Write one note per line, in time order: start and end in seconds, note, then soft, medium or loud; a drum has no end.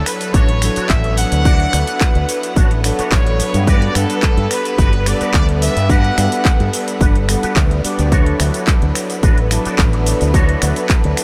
0.00 0.58 F#3 medium
0.00 8.11 B3 medium
0.00 0.59 D4 medium
0.00 0.59 E4 medium
0.00 0.59 A4 medium
0.00 8.11 B4 medium
0.00 0.58 C#5 medium
0.06 0.34 B4 medium
0.06 finger snap medium
0.06 open hi-hat loud
0.06 shaker medium
0.21 closed hi-hat medium
0.21 shaker soft
0.33 0.67 A1 medium
0.33 0.48 D4 medium
0.33 0.49 F#4 medium
0.33 0.49 A4 medium
0.33 0.89 C#5 loud
0.33 0.49 C#5 medium
0.33 kick loud
0.33 closed hi-hat medium
0.33 shaker soft
0.49 closed hi-hat soft
0.61 1.42 F#3 loud
0.61 1.42 D4 medium
0.61 1.42 E4 medium
0.61 1.43 A4 loud
0.61 1.42 C#5 medium
0.61 finger snap medium
0.61 muted clean electric guitar stroke soft
0.61 open hi-hat loud
0.61 shaker medium
0.76 0.90 D4 medium
0.76 0.90 F#4 medium
0.76 0.90 A4 medium
0.76 0.90 C#5 medium
0.76 muted fingered electric bass stroke soft
0.76 closed hi-hat medium
0.76 shaker soft
0.89 1.23 A1 loud
0.89 1.17 E5 loud
0.89 kick loud
0.89 clap loud
0.89 closed hi-hat medium
0.89 shaker soft
1.04 muted clean electric guitar stroke medium
1.04 closed hi-hat soft
1.17 2.81 F#5 loud
1.17 muted clean electric guitar stroke soft
1.17 open hi-hat loud
1.17 shaker medium
1.32 1.65 D2 medium
1.32 closed hi-hat medium
1.32 shaker soft
1.45 2.01 D4 loud
1.45 2.01 F#4 loud
1.45 2.01 A4 loud
1.45 2.01 D5 loud
1.45 kick loud
1.45 closed hi-hat medium
1.45 shaker soft
1.60 closed hi-hat soft
1.73 1.82 D2 loud
1.73 finger snap medium
1.73 open hi-hat loud
1.73 shaker medium
1.87 closed hi-hat medium
1.87 shaker soft
2.01 kick loud
2.01 clap loud
2.01 closed hi-hat medium
2.01 shaker soft
2.15 2.23 D2 medium
2.15 closed hi-hat soft
2.29 open hi-hat loud
2.29 shaker medium
2.43 closed hi-hat medium
2.43 shaker soft
2.56 2.90 A1 medium
2.56 2.70 D4 medium
2.56 2.71 F#4 medium
2.56 2.71 A4 medium
2.56 2.71 C#5 medium
2.56 kick loud
2.56 closed hi-hat medium
2.56 shaker soft
2.71 closed hi-hat soft
2.83 3.64 F#3 medium
2.83 3.64 D4 medium
2.83 3.64 E4 medium
2.83 3.65 A4 loud
2.83 3.64 C#5 medium
2.83 finger snap medium
2.83 muted clean electric guitar stroke soft
2.83 open hi-hat loud
2.83 shaker medium
2.98 3.11 D4 medium
2.98 3.12 F#4 medium
2.98 3.12 A4 medium
2.98 3.12 C#5 loud
2.98 muted fingered electric bass stroke soft
2.98 closed hi-hat medium
2.98 shaker soft
3.12 3.39 A1 loud
3.12 3.63 C#5 loud
3.12 kick loud
3.12 clap loud
3.12 closed hi-hat medium
3.12 shaker soft
3.25 muted clean electric guitar stroke medium
3.25 closed hi-hat soft
3.39 muted clean electric guitar stroke soft
3.39 muted fingered electric bass stroke soft
3.39 open hi-hat loud
3.39 shaker medium
3.54 3.87 G2 medium
3.54 closed hi-hat medium
3.54 shaker soft
3.67 5.03 G3 medium
3.67 5.03 B3 medium
3.67 4.23 D4 loud
3.67 5.03 D4 medium
3.67 4.23 F#4 loud
3.67 4.23 G4 loud
3.67 5.04 A4 medium
3.67 4.23 B4 loud
3.67 3.96 D5 loud
3.67 5.03 F#5 medium
3.67 kick loud
3.67 closed hi-hat medium
3.67 shaker soft
3.82 closed hi-hat soft
3.95 4.04 G2 loud
3.95 4.51 A4 loud
3.95 finger snap medium
3.95 open hi-hat loud
3.95 shaker medium
4.10 closed hi-hat medium
4.10 shaker soft
4.23 kick loud
4.23 clap loud
4.23 closed hi-hat medium
4.23 shaker soft
4.37 4.45 G2 loud
4.37 closed hi-hat soft
4.51 5.07 B4 loud
4.51 finger snap medium
4.51 open hi-hat loud
4.51 shaker medium
4.65 closed hi-hat medium
4.65 shaker soft
4.78 5.12 G1 medium
4.78 4.93 D4 medium
4.78 4.93 F#4 medium
4.78 4.93 G4 medium
4.78 4.93 B4 loud
4.78 kick loud
4.78 closed hi-hat medium
4.78 shaker soft
4.93 closed hi-hat soft
5.05 5.86 G3 loud
5.05 5.86 B3 medium
5.05 5.87 D4 medium
5.05 5.87 A4 loud
5.05 5.34 D5 loud
5.05 5.87 F#5 medium
5.05 finger snap medium
5.05 muted clean electric guitar stroke soft
5.05 open hi-hat loud
5.05 shaker medium
5.20 5.34 D4 medium
5.20 5.34 F#4 medium
5.20 5.34 G4 medium
5.20 5.34 B4 medium
5.20 muted fingered electric bass stroke soft
5.20 closed hi-hat soft
5.20 shaker soft
5.34 5.67 D2 loud
5.34 5.47 D5 loud
5.34 kick loud
5.34 clap loud
5.34 closed hi-hat soft
5.34 shaker soft
5.48 muted clean electric guitar stroke medium
5.48 closed hi-hat soft
5.62 5.88 E5 loud
5.62 muted clean electric guitar stroke soft
5.62 open hi-hat loud
5.62 shaker medium
5.76 6.09 G2 medium
5.76 closed hi-hat medium
5.76 shaker soft
5.88 7.25 G3 medium
5.88 7.25 B3 medium
5.88 6.45 D4 loud
5.88 6.45 F#4 loud
5.88 6.45 G4 loud
5.88 7.26 A4 medium
5.88 6.46 B4 loud
5.88 6.73 F#5 loud
5.88 kick loud
5.88 closed hi-hat soft
5.88 shaker soft
6.04 closed hi-hat soft
6.18 6.26 G2 loud
6.18 finger snap medium
6.18 open hi-hat loud
6.18 shaker medium
6.32 closed hi-hat soft
6.32 shaker soft
6.45 kick loud
6.45 clap loud
6.45 closed hi-hat soft
6.45 shaker soft
6.60 6.68 G2 medium
6.60 closed hi-hat soft
6.73 open hi-hat loud
6.73 shaker medium
6.88 closed hi-hat soft
6.88 shaker soft
7.00 7.34 G1 medium
7.00 7.15 D4 medium
7.00 7.15 F#4 medium
7.00 7.15 G4 medium
7.00 7.16 B4 medium
7.00 kick loud
7.00 closed hi-hat soft
7.00 shaker soft
7.15 closed hi-hat soft
7.28 7.81 G3 medium
7.28 7.81 B3 medium
7.28 7.81 D4 medium
7.28 7.81 A4 medium
7.28 7.81 F#5 medium
7.28 finger snap medium
7.28 muted clean electric guitar stroke soft
7.28 open hi-hat loud
7.28 shaker medium
7.42 7.56 D4 medium
7.42 7.56 F#4 medium
7.42 7.57 G4 medium
7.42 7.57 B4 medium
7.42 muted fingered electric bass stroke soft
7.42 closed hi-hat soft
7.42 shaker soft
7.56 7.84 D2 loud
7.56 kick loud
7.56 clap loud
7.56 closed hi-hat soft
7.56 shaker soft
7.70 muted clean electric guitar stroke medium
7.70 closed hi-hat soft
7.83 8.09 G3 loud
7.83 8.09 B3 medium
7.83 8.09 D4 medium
7.83 8.09 F#4 medium
7.83 8.09 D5 loud
7.83 muted clean electric guitar stroke soft
7.83 muted fingered electric bass stroke soft
7.83 open hi-hat loud
7.83 shaker medium
7.99 8.31 D2 medium
7.99 closed hi-hat soft
7.99 shaker soft
8.11 9.47 F#3 medium
8.11 11.24 B3 medium
8.11 8.67 D4 loud
8.11 9.48 D4 medium
8.11 8.67 F#4 loud
8.11 8.68 A4 loud
8.11 11.24 B4 medium
8.11 9.47 C#5 medium
8.11 8.68 C#5 loud
8.11 kick loud
8.11 closed hi-hat soft
8.11 shaker soft
8.26 closed hi-hat soft
8.40 8.49 D2 loud
8.40 finger snap medium
8.40 open hi-hat loud
8.40 shaker medium
8.54 closed hi-hat soft
8.54 shaker soft
8.67 kick loud
8.67 clap loud
8.67 closed hi-hat soft
8.67 shaker soft
8.82 8.90 D2 medium
8.82 closed hi-hat soft
8.95 finger snap medium
8.95 open hi-hat loud
8.95 shaker medium
9.10 closed hi-hat soft
9.10 shaker soft
9.22 9.56 A1 medium
9.22 9.37 D4 medium
9.22 9.37 F#4 medium
9.22 9.38 A4 medium
9.22 9.38 B4 medium
9.22 kick loud
9.22 closed hi-hat soft
9.22 shaker soft
9.38 closed hi-hat soft
9.49 10.30 F#3 medium
9.49 10.31 D4 medium
9.49 10.31 E4 medium
9.49 10.31 A4 loud
9.49 finger snap medium
9.49 muted clean electric guitar stroke soft
9.49 open hi-hat loud
9.49 shaker medium
9.65 9.78 D4 medium
9.65 9.79 F#4 medium
9.65 9.79 A4 medium
9.65 9.79 D5 loud
9.65 muted fingered electric bass stroke soft
9.65 closed hi-hat soft
9.65 shaker soft
9.78 10.12 A1 loud
9.78 kick loud
9.78 clap loud
9.78 closed hi-hat medium
9.78 shaker soft
9.93 muted clean electric guitar stroke medium
9.93 closed hi-hat soft
10.06 muted clean electric guitar stroke soft
10.06 open hi-hat loud
10.06 shaker medium
10.21 10.54 D2 medium
10.21 closed hi-hat medium
10.21 shaker soft
10.33 11.24 F#3 medium
10.33 10.89 D4 loud
10.33 11.24 D4 medium
10.33 11.24 E4 medium
10.33 10.90 F#4 loud
10.33 10.90 A4 loud
10.33 11.24 A4 medium
10.33 10.90 C#5 loud
10.33 kick loud
10.33 closed hi-hat medium
10.33 shaker soft
10.49 closed hi-hat soft
10.62 10.71 D2 loud
10.62 finger snap medium
10.62 open hi-hat loud
10.62 shaker medium
10.76 closed hi-hat medium
10.76 shaker soft
10.89 kick loud
10.89 clap loud
10.89 closed hi-hat medium
10.89 shaker soft
11.04 11.13 D2 loud
11.04 closed hi-hat soft
11.17 finger snap medium
11.17 open hi-hat loud
11.17 shaker medium